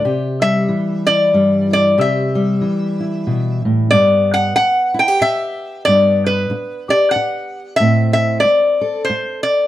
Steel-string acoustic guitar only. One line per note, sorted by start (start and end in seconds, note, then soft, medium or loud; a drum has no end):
0.05 0.69 C3 medium
0.05 1.98 G4 medium
0.41 1.34 G3 soft
0.68 1.95 E3 medium
1.07 1.70 E4 soft
1.33 1.95 G2 medium
1.33 2.34 G3 medium
1.71 1.95 E4 medium
1.98 2.62 C3 medium
1.98 3.89 G4 medium
2.35 3.92 G3 medium
2.61 3.88 E3 medium
3.00 3.89 E4 soft
3.27 3.64 B2 medium
3.65 3.92 A2 medium
3.92 4.57 G2 medium
3.92 5.83 B3 medium
4.57 muted steel-string acoustic guitar stroke medium
4.94 5.08 E4 medium
5.08 5.86 G4 medium
5.21 muted steel-string acoustic guitar stroke medium
5.87 6.49 G2 medium
5.87 7.77 B3 medium
6.50 muted steel-string acoustic guitar stroke medium
6.89 7.76 G4 medium
7.15 muted steel-string acoustic guitar stroke medium
7.80 8.44 A2 medium
7.80 9.67 C4 medium
8.44 muted steel-string acoustic guitar stroke medium
8.81 9.67 A4 medium
9.09 muted steel-string acoustic guitar stroke medium